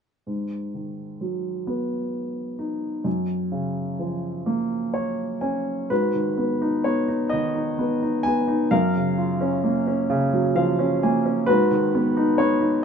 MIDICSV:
0, 0, Header, 1, 2, 480
1, 0, Start_track
1, 0, Tempo, 933126
1, 139, Time_signature, 6, 3, 24, 8
1, 2055, Tempo, 952381
1, 3495, Tempo, 931677
1, 4935, Tempo, 914634
1, 6613, End_track
2, 0, Start_track
2, 0, Title_t, "Grand piano"
2, 0, Program_c, 0, 0
2, 137, Note_on_c, 0, 44, 33
2, 235, Control_c, 0, 64, 127
2, 383, Note_on_c, 0, 51, 27
2, 622, Note_on_c, 0, 54, 30
2, 860, Note_on_c, 0, 59, 34
2, 1316, Note_off_c, 0, 51, 0
2, 1331, Note_on_c, 0, 63, 31
2, 1553, Note_off_c, 0, 54, 0
2, 1553, Note_off_c, 0, 59, 0
2, 1554, Note_off_c, 0, 44, 0
2, 1565, Note_off_c, 0, 63, 0
2, 1566, Note_on_c, 0, 42, 42
2, 1582, Control_c, 0, 64, 0
2, 1665, Control_c, 0, 64, 127
2, 1810, Note_on_c, 0, 49, 34
2, 2054, Note_on_c, 0, 53, 38
2, 2291, Note_on_c, 0, 58, 47
2, 2529, Note_on_c, 0, 73, 53
2, 2752, Note_off_c, 0, 49, 0
2, 2755, Note_off_c, 0, 73, 0
2, 2769, Note_on_c, 0, 80, 46
2, 2771, Note_on_c, 0, 61, 42
2, 2993, Note_off_c, 0, 42, 0
2, 2996, Note_off_c, 0, 53, 0
2, 2996, Note_off_c, 0, 58, 0
2, 2998, Note_off_c, 0, 80, 0
2, 3008, Note_off_c, 0, 61, 0
2, 3016, Note_on_c, 0, 71, 65
2, 3017, Note_on_c, 0, 44, 45
2, 3021, Note_on_c, 0, 66, 42
2, 3025, Control_c, 0, 64, 0
2, 3113, Control_c, 0, 64, 127
2, 3138, Note_on_c, 0, 51, 35
2, 3255, Note_on_c, 0, 59, 37
2, 3376, Note_on_c, 0, 63, 47
2, 3486, Note_off_c, 0, 59, 0
2, 3490, Note_on_c, 0, 73, 63
2, 3493, Note_on_c, 0, 59, 38
2, 3510, Note_off_c, 0, 71, 0
2, 3606, Note_off_c, 0, 63, 0
2, 3614, Note_on_c, 0, 63, 46
2, 3715, Note_off_c, 0, 66, 0
2, 3723, Note_on_c, 0, 75, 72
2, 3733, Note_off_c, 0, 51, 0
2, 3738, Note_off_c, 0, 73, 0
2, 3741, Note_on_c, 0, 51, 57
2, 3846, Note_off_c, 0, 63, 0
2, 3854, Note_on_c, 0, 63, 42
2, 3969, Note_off_c, 0, 59, 0
2, 3977, Note_on_c, 0, 59, 44
2, 4090, Note_off_c, 0, 63, 0
2, 4098, Note_on_c, 0, 63, 44
2, 4206, Note_on_c, 0, 80, 76
2, 4214, Note_off_c, 0, 59, 0
2, 4220, Note_off_c, 0, 75, 0
2, 4222, Note_on_c, 0, 59, 41
2, 4325, Note_off_c, 0, 63, 0
2, 4333, Note_on_c, 0, 63, 47
2, 4433, Note_off_c, 0, 44, 0
2, 4436, Note_off_c, 0, 51, 0
2, 4450, Note_off_c, 0, 63, 0
2, 4452, Note_off_c, 0, 59, 0
2, 4452, Note_on_c, 0, 77, 78
2, 4453, Note_on_c, 0, 42, 59
2, 4455, Note_on_c, 0, 70, 61
2, 4459, Note_off_c, 0, 80, 0
2, 4461, Control_c, 0, 64, 0
2, 4557, Control_c, 0, 64, 127
2, 4576, Note_on_c, 0, 49, 40
2, 4693, Note_on_c, 0, 65, 42
2, 4812, Note_on_c, 0, 61, 52
2, 4931, Note_on_c, 0, 58, 47
2, 5045, Note_off_c, 0, 61, 0
2, 5053, Note_on_c, 0, 61, 51
2, 5163, Note_off_c, 0, 49, 0
2, 5171, Note_on_c, 0, 49, 68
2, 5293, Note_on_c, 0, 54, 52
2, 5396, Note_off_c, 0, 77, 0
2, 5397, Note_off_c, 0, 70, 0
2, 5410, Note_on_c, 0, 53, 56
2, 5413, Note_on_c, 0, 77, 63
2, 5527, Note_off_c, 0, 61, 0
2, 5535, Note_on_c, 0, 61, 53
2, 5636, Note_off_c, 0, 65, 0
2, 5639, Note_off_c, 0, 77, 0
2, 5654, Note_off_c, 0, 58, 0
2, 5662, Note_on_c, 0, 58, 48
2, 5662, Note_on_c, 0, 80, 56
2, 5772, Note_off_c, 0, 61, 0
2, 5780, Note_on_c, 0, 61, 55
2, 5875, Note_off_c, 0, 49, 0
2, 5878, Note_off_c, 0, 42, 0
2, 5879, Note_off_c, 0, 54, 0
2, 5881, Note_off_c, 0, 53, 0
2, 5885, Note_off_c, 0, 80, 0
2, 5889, Note_on_c, 0, 71, 82
2, 5894, Note_off_c, 0, 58, 0
2, 5894, Note_on_c, 0, 66, 58
2, 5896, Note_off_c, 0, 61, 0
2, 5902, Note_on_c, 0, 44, 61
2, 5905, Control_c, 0, 64, 0
2, 6004, Control_c, 0, 64, 127
2, 6020, Note_on_c, 0, 51, 51
2, 6143, Note_on_c, 0, 59, 54
2, 6257, Note_on_c, 0, 63, 54
2, 6370, Note_on_c, 0, 73, 77
2, 6371, Note_off_c, 0, 59, 0
2, 6379, Note_on_c, 0, 59, 51
2, 6388, Note_off_c, 0, 71, 0
2, 6483, Note_off_c, 0, 63, 0
2, 6491, Note_on_c, 0, 63, 47
2, 6591, Note_off_c, 0, 66, 0
2, 6603, Note_off_c, 0, 51, 0
2, 6613, Note_off_c, 0, 44, 0
2, 6613, Note_off_c, 0, 59, 0
2, 6613, Note_off_c, 0, 63, 0
2, 6613, Note_off_c, 0, 73, 0
2, 6613, End_track
0, 0, End_of_file